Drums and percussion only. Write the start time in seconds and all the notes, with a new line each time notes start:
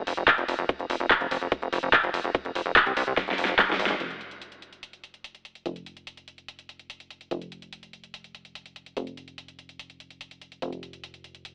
0.07 open hi-hat, ride
0.17 closed hi-hat
0.28 kick, clap, closed hi-hat
0.38 closed hi-hat
0.48 open hi-hat, ride
0.59 closed hi-hat
0.69 kick, closed hi-hat
0.79 closed hi-hat
0.90 open hi-hat, ride
1.00 closed hi-hat
1.10 kick, clap, closed hi-hat
1.21 closed hi-hat
1.31 open hi-hat, ride
1.42 closed hi-hat
1.52 kick, closed hi-hat
1.62 closed hi-hat
1.73 open hi-hat, ride
1.83 closed hi-hat
1.93 kick, clap, closed hi-hat
2.04 closed hi-hat
2.14 open hi-hat, ride
2.24 closed hi-hat
2.35 kick, closed hi-hat
2.45 closed hi-hat
2.55 open hi-hat, ride
2.66 closed hi-hat
2.76 kick, clap, closed hi-hat
2.86 closed hi-hat
2.97 open hi-hat, ride
3.07 closed hi-hat
3.17 kick, snare, closed hi-hat
3.28 snare, closed hi-hat
3.38 open hi-hat, ride
3.45 snare, closed hi-hat
3.59 kick, snare, clap, closed hi-hat
3.69 snare, closed hi-hat
3.79 open hi-hat, ride
3.86 snare
4.00 closed hi-hat
4.11 closed hi-hat
4.21 closed hi-hat
4.31 closed hi-hat
4.42 closed hi-hat
4.52 closed hi-hat
4.62 closed hi-hat
4.73 closed hi-hat
4.83 closed hi-hat
4.93 closed hi-hat
5.04 closed hi-hat
5.14 closed hi-hat
5.24 closed hi-hat
5.35 closed hi-hat
5.45 closed hi-hat
5.55 closed hi-hat
5.66 closed hi-hat
5.76 closed hi-hat
5.86 closed hi-hat
5.97 closed hi-hat
6.07 closed hi-hat
6.17 closed hi-hat
6.28 closed hi-hat
6.38 closed hi-hat
6.48 closed hi-hat
6.59 closed hi-hat
6.69 closed hi-hat
6.79 closed hi-hat
6.90 closed hi-hat
7.00 closed hi-hat
7.11 closed hi-hat
7.21 closed hi-hat
7.31 closed hi-hat
7.42 closed hi-hat
7.52 closed hi-hat
7.62 closed hi-hat
7.73 closed hi-hat
7.83 closed hi-hat
7.93 closed hi-hat
8.04 closed hi-hat
8.14 closed hi-hat
8.24 closed hi-hat
8.35 closed hi-hat
8.45 closed hi-hat
8.55 closed hi-hat
8.66 closed hi-hat
8.76 closed hi-hat
8.86 closed hi-hat
8.97 closed hi-hat
9.07 closed hi-hat
9.17 closed hi-hat
9.28 closed hi-hat
9.38 closed hi-hat
9.48 closed hi-hat
9.59 closed hi-hat
9.69 closed hi-hat
9.79 closed hi-hat
9.90 closed hi-hat
10.00 closed hi-hat
10.11 closed hi-hat
10.21 closed hi-hat
10.31 closed hi-hat
10.42 closed hi-hat
10.52 closed hi-hat
10.62 closed hi-hat
10.73 closed hi-hat
10.83 closed hi-hat
10.93 closed hi-hat
11.04 closed hi-hat
11.14 closed hi-hat
11.24 closed hi-hat
11.35 closed hi-hat
11.45 closed hi-hat